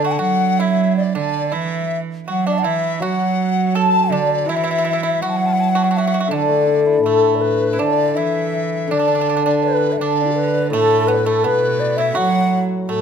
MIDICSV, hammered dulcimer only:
0, 0, Header, 1, 2, 480
1, 0, Start_track
1, 0, Tempo, 738916
1, 264, Time_signature, 2, 2, 24, 8
1, 5547, Tempo, 727273
1, 8501, End_track
2, 0, Start_track
2, 0, Title_t, "Hammered dulcimer"
2, 0, Program_c, 0, 15
2, 0, Note_on_c, 0, 50, 57
2, 740, Note_off_c, 0, 50, 0
2, 1947, Note_on_c, 0, 54, 57
2, 2895, Note_on_c, 0, 52, 58
2, 3381, Note_off_c, 0, 54, 0
2, 4078, Note_on_c, 0, 50, 56
2, 4213, Note_on_c, 0, 57, 44
2, 4331, Note_off_c, 0, 52, 0
2, 4332, Note_on_c, 0, 62, 41
2, 4457, Note_on_c, 0, 64, 41
2, 4569, Note_on_c, 0, 69, 42
2, 5035, Note_off_c, 0, 50, 0
2, 5042, Note_on_c, 0, 50, 57
2, 5180, Note_off_c, 0, 57, 0
2, 5300, Note_off_c, 0, 62, 0
2, 5423, Note_off_c, 0, 64, 0
2, 5540, Note_off_c, 0, 69, 0
2, 5761, Note_off_c, 0, 50, 0
2, 5769, Note_on_c, 0, 50, 61
2, 6974, Note_on_c, 0, 45, 65
2, 7218, Note_off_c, 0, 50, 0
2, 7924, Note_on_c, 0, 54, 59
2, 8416, Note_off_c, 0, 45, 0
2, 8501, Note_off_c, 0, 54, 0
2, 8501, End_track
0, 0, End_of_file